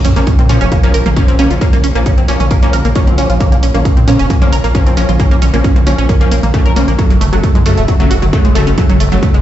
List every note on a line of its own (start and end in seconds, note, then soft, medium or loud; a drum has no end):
0.00 sub drop medium
0.05 0.14 A#1 loud
0.05 0.07 C#4 medium
0.05 open hi-hat loud
0.05 mid tom medium
0.05 shaker medium
0.16 0.25 A#1 medium
0.16 0.32 F3 medium
0.16 0.19 A#3 loud
0.16 0.32 A#3 medium
0.16 0.32 C#4 medium
0.16 closed hi-hat medium
0.16 shaker soft
0.27 0.32 C#4 medium
0.27 kick loud
0.27 closed hi-hat loud
0.27 shaker soft
0.39 0.47 A#2 medium
0.39 0.41 C4 medium
0.39 closed hi-hat medium
0.39 mid tom medium
0.49 0.58 A#2 loud
0.49 0.66 F3 medium
0.49 0.66 A#3 medium
0.49 0.54 C#4 medium
0.49 0.66 C#4 loud
0.49 open hi-hat loud
0.49 shaker medium
0.61 0.69 F1 medium
0.61 0.68 C#4 loud
0.61 closed hi-hat medium
0.61 shaker soft
0.72 0.77 A#3 loud
0.72 kick loud
0.72 closed hi-hat loud
0.72 mid tom medium
0.72 shaker soft
0.83 0.92 A#1 medium
0.83 0.93 F3 loud
0.83 0.88 A#3 loud
0.83 0.93 A#3 medium
0.83 0.93 C#4 loud
0.83 closed hi-hat medium
0.83 shaker soft
0.94 1.03 A#1 loud
0.94 0.97 A#4 medium
0.94 open hi-hat loud
0.94 shaker medium
1.06 1.14 A#1 medium
1.06 1.08 A#3 loud
1.06 closed hi-hat medium
1.06 mid tom medium
1.06 shaker soft
1.16 1.33 F3 loud
1.16 1.33 A#3 medium
1.16 1.33 C#4 loud
1.16 1.21 C#4 medium
1.16 kick loud
1.16 closed hi-hat loud
1.16 shaker soft
1.28 1.37 A#1 medium
1.28 1.35 C4 medium
1.28 closed hi-hat medium
1.28 shaker soft
1.39 1.48 A#1 loud
1.39 1.49 F3 medium
1.39 1.49 A#3 medium
1.39 1.49 C#4 loud
1.39 1.44 C#4 medium
1.39 open hi-hat loud
1.39 mid tom medium
1.39 shaker medium
1.50 1.59 A#1 medium
1.50 1.53 F4 medium
1.50 closed hi-hat medium
1.50 shaker soft
1.61 1.72 F3 medium
1.61 1.72 A#3 medium
1.61 1.66 A#3 loud
1.61 1.72 C#4 medium
1.61 kick loud
1.61 closed hi-hat loud
1.61 shaker soft
1.73 1.81 A#1 medium
1.73 1.77 A#3 loud
1.73 closed hi-hat medium
1.73 mid tom medium
1.73 shaker soft
1.84 1.93 A#1 loud
1.84 1.87 C#4 medium
1.84 open hi-hat loud
1.84 shaker medium
1.95 2.04 A#1 medium
1.95 2.11 F3 medium
1.95 2.11 A#3 medium
1.95 1.98 A#3 loud
1.95 2.11 C#4 medium
1.95 closed hi-hat medium
1.95 shaker soft
2.06 2.11 C#4 medium
2.06 kick loud
2.06 closed hi-hat loud
2.06 mid tom medium
2.06 shaker soft
2.18 2.26 A#1 medium
2.18 2.20 C4 medium
2.18 closed hi-hat medium
2.28 2.38 A#1 loud
2.28 2.45 F3 medium
2.28 2.45 A#3 medium
2.28 2.45 C#4 loud
2.28 2.33 C#4 medium
2.28 open hi-hat loud
2.28 shaker medium
2.40 2.48 A#1 medium
2.40 2.47 C#4 loud
2.40 closed hi-hat medium
2.40 mid tom medium
2.40 shaker soft
2.51 2.56 A#3 loud
2.51 kick loud
2.51 closed hi-hat medium
2.51 shaker soft
2.62 2.71 A#1 medium
2.62 2.72 F3 loud
2.62 2.72 A#3 medium
2.62 2.67 A#3 loud
2.62 2.72 C#4 loud
2.62 closed hi-hat medium
2.62 shaker soft
2.73 2.82 A#1 loud
2.73 2.76 A#4 medium
2.73 open hi-hat loud
2.73 mid tom medium
2.73 shaker medium
2.85 2.93 A#1 medium
2.85 2.88 A#3 loud
2.85 closed hi-hat medium
2.85 shaker soft
2.95 3.12 F3 loud
2.95 3.12 A#3 medium
2.95 3.12 C#4 loud
2.95 3.00 C#4 medium
2.95 kick loud
2.95 closed hi-hat loud
2.95 shaker soft
3.07 3.16 A#1 medium
3.07 3.14 C4 medium
3.07 closed hi-hat medium
3.07 mid tom medium
3.07 shaker soft
3.18 3.27 A#1 loud
3.18 3.28 F3 medium
3.18 3.28 A#3 medium
3.18 3.23 C#4 medium
3.18 3.28 C#4 loud
3.18 open hi-hat loud
3.18 shaker medium
3.30 3.38 A#1 medium
3.30 3.32 F4 medium
3.30 closed hi-hat medium
3.30 shaker soft
3.40 3.51 F3 medium
3.40 3.45 A#3 loud
3.40 3.51 A#3 medium
3.40 3.51 C#4 medium
3.40 kick loud
3.40 closed hi-hat medium
3.40 mid tom medium
3.40 shaker soft
3.52 3.60 A#1 medium
3.52 3.56 A#3 loud
3.52 closed hi-hat medium
3.52 shaker soft
3.63 3.72 A#1 loud
3.63 3.66 C#4 medium
3.63 open hi-hat loud
3.63 shaker medium
3.74 3.83 A#1 medium
3.74 3.90 F3 medium
3.74 3.90 A#3 medium
3.74 3.77 A#3 loud
3.74 3.90 C#4 medium
3.74 closed hi-hat medium
3.74 mid tom medium
3.74 shaker soft
3.85 3.90 C#4 medium
3.85 kick loud
3.85 closed hi-hat loud
3.85 shaker soft
3.97 4.05 A#2 medium
3.97 4.00 C4 medium
3.97 closed hi-hat medium
4.07 4.17 A#2 loud
4.07 4.24 F3 medium
4.07 4.24 A#3 medium
4.07 4.24 C#4 loud
4.07 4.12 C#4 medium
4.07 open hi-hat loud
4.07 mid tom medium
4.07 shaker medium
4.19 4.28 F1 medium
4.19 4.26 C#4 loud
4.19 closed hi-hat medium
4.19 shaker soft
4.30 4.35 A#3 loud
4.30 kick loud
4.30 closed hi-hat medium
4.30 shaker soft
4.41 4.50 A#1 medium
4.41 4.51 F3 loud
4.41 4.51 A#3 medium
4.41 4.46 A#3 loud
4.41 4.51 C#4 loud
4.41 closed hi-hat medium
4.41 mid tom medium
4.41 shaker soft
4.52 4.61 A#1 loud
4.52 4.55 A#4 medium
4.52 open hi-hat loud
4.52 shaker medium
4.64 4.72 A#1 medium
4.64 4.67 A#3 loud
4.64 closed hi-hat medium
4.64 shaker soft
4.75 4.91 F3 loud
4.75 4.91 A#3 medium
4.75 4.91 C#4 loud
4.75 4.80 C#4 medium
4.75 kick loud
4.75 closed hi-hat loud
4.75 mid tom medium
4.75 shaker soft
4.86 4.95 A#1 medium
4.86 4.93 C4 medium
4.86 closed hi-hat medium
4.86 shaker soft
4.97 5.06 A#1 loud
4.97 5.07 F3 medium
4.97 5.07 A#3 medium
4.97 5.07 C#4 medium
4.97 5.02 C#4 medium
4.97 open hi-hat loud
4.97 shaker medium
5.09 5.17 A#1 medium
5.09 5.11 F4 medium
5.09 closed hi-hat medium
5.09 mid tom medium
5.09 shaker soft
5.19 5.30 F3 medium
5.19 5.30 A#3 medium
5.19 5.24 A#3 loud
5.19 5.30 C#4 medium
5.19 kick loud
5.19 closed hi-hat medium
5.19 shaker soft
5.31 5.40 A#1 medium
5.31 5.36 A#3 loud
5.31 closed hi-hat medium
5.31 shaker soft
5.42 5.51 A#1 loud
5.42 5.45 C#4 medium
5.42 open hi-hat loud
5.42 mid tom medium
5.42 shaker medium
5.54 5.62 A#1 loud
5.54 5.69 F3 medium
5.54 5.56 A#3 loud
5.54 5.69 A#3 medium
5.54 5.69 C#4 medium
5.54 closed hi-hat medium
5.54 shaker soft
5.64 5.69 C#4 medium
5.64 kick loud
5.64 closed hi-hat medium
5.64 shaker soft
5.76 5.84 A#1 medium
5.76 5.79 C4 medium
5.76 closed hi-hat medium
5.76 mid tom medium
5.87 5.96 A#1 loud
5.87 6.03 F3 medium
5.87 6.03 A#3 medium
5.87 5.91 C#4 medium
5.87 6.03 C#4 loud
5.87 open hi-hat loud
5.87 shaker medium
5.98 6.07 A#1 medium
5.98 6.05 C#4 loud
5.98 closed hi-hat medium
5.98 shaker soft
6.09 6.14 A#3 medium
6.09 kick loud
6.09 closed hi-hat medium
6.09 mid tom medium
6.09 shaker soft
6.21 6.29 A#1 medium
6.21 6.30 F3 loud
6.21 6.25 A#3 loud
6.21 6.30 A#3 medium
6.21 6.30 C#4 loud
6.21 closed hi-hat medium
6.21 shaker soft
6.31 6.41 A#1 loud
6.31 6.36 A#3 medium
6.31 open hi-hat loud
6.31 shaker medium
6.43 6.51 A#1 medium
6.43 6.47 A#3 medium
6.43 closed hi-hat medium
6.43 mid tom medium
6.43 shaker soft
6.54 6.70 F3 loud
6.54 6.61 A3 loud
6.54 6.70 A#3 medium
6.54 6.70 C#4 loud
6.54 kick loud
6.54 closed hi-hat loud
6.54 shaker soft
6.65 6.74 A#1 medium
6.65 6.72 A#4 medium
6.65 closed hi-hat medium
6.65 shaker soft
6.76 6.85 A#1 loud
6.76 6.87 F3 medium
6.76 6.81 A#3 medium
6.76 6.87 A#3 medium
6.76 6.87 C#4 loud
6.76 open hi-hat loud
6.76 mid tom medium
6.76 shaker medium
6.88 6.96 A#1 medium
6.88 6.92 A#3 medium
6.88 closed hi-hat medium
6.88 shaker soft
6.98 7.09 C#3 medium
6.98 7.03 F#3 loud
6.98 7.09 F#3 medium
6.98 7.09 A3 medium
6.98 kick loud
6.98 closed hi-hat medium
6.98 shaker soft
7.10 7.19 F#1 medium
7.10 7.15 F#3 loud
7.10 closed hi-hat medium
7.10 shaker soft
7.21 7.30 F#1 loud
7.21 7.24 A3 medium
7.21 open hi-hat loud
7.21 mid tom medium
7.21 shaker medium
7.33 7.41 F#1 medium
7.33 7.48 C#3 medium
7.33 7.35 F#3 loud
7.33 7.48 F#3 medium
7.33 7.48 A3 medium
7.33 closed hi-hat medium
7.33 shaker soft
7.43 7.48 A3 medium
7.43 kick loud
7.43 closed hi-hat medium
7.43 shaker soft
7.55 7.63 F#2 medium
7.55 7.58 G#3 medium
7.55 closed hi-hat soft
7.55 mid tom medium
7.66 7.75 F#2 loud
7.66 7.82 C#3 medium
7.66 7.82 F#3 medium
7.66 7.82 A3 loud
7.66 7.71 A3 medium
7.66 open hi-hat loud
7.66 shaker medium
7.77 7.86 E1 medium
7.77 7.84 A3 loud
7.77 closed hi-hat soft
7.77 shaker soft
7.88 7.93 F#3 loud
7.88 kick loud
7.88 closed hi-hat medium
7.88 mid tom medium
7.88 shaker soft
8.00 8.08 F#1 medium
8.00 8.09 C#3 loud
8.00 8.09 F#3 medium
8.00 8.04 F#3 loud
8.00 8.09 A3 loud
8.00 closed hi-hat soft
8.00 shaker soft
8.11 8.20 F#1 loud
8.11 8.13 F#4 medium
8.11 open hi-hat loud
8.11 shaker medium
8.22 8.31 F#1 medium
8.22 8.25 F#3 loud
8.22 closed hi-hat soft
8.22 mid tom medium
8.22 shaker soft
8.33 8.49 C#3 medium
8.33 8.49 F#3 medium
8.33 8.49 A3 loud
8.33 8.38 A3 medium
8.33 kick loud
8.33 closed hi-hat medium
8.33 shaker soft
8.45 8.53 F#1 medium
8.45 8.51 G#3 medium
8.45 closed hi-hat medium
8.45 shaker soft
8.55 8.64 F#1 loud
8.55 8.66 C#3 medium
8.55 8.66 F#3 medium
8.55 8.60 A3 medium
8.55 8.66 A3 loud
8.55 open hi-hat loud
8.55 mid tom medium
8.55 shaker medium
8.67 8.75 F#1 medium
8.67 8.70 C#4 medium
8.67 closed hi-hat soft
8.67 shaker soft
8.78 8.88 C#3 medium
8.78 8.82 F#3 loud
8.78 8.88 F#3 medium
8.78 8.88 A3 medium
8.78 kick loud
8.78 closed hi-hat medium
8.78 shaker soft
8.89 8.98 F#1 medium
8.89 8.94 F#3 loud
8.89 closed hi-hat medium
8.89 mid tom medium
8.89 shaker soft
9.00 9.09 F#1 loud
9.00 9.03 A3 medium
9.00 open hi-hat loud
9.00 shaker medium
9.12 9.20 F#1 medium
9.12 9.28 C#3 medium
9.12 9.14 F#3 loud
9.12 9.28 F#3 medium
9.12 9.28 A3 medium
9.12 closed hi-hat soft
9.12 shaker soft
9.23 9.27 A3 medium
9.23 kick loud
9.23 closed hi-hat medium
9.23 mid tom medium
9.23 shaker soft
9.34 9.42 F#1 medium
9.34 9.37 G#3 medium
9.34 closed hi-hat soft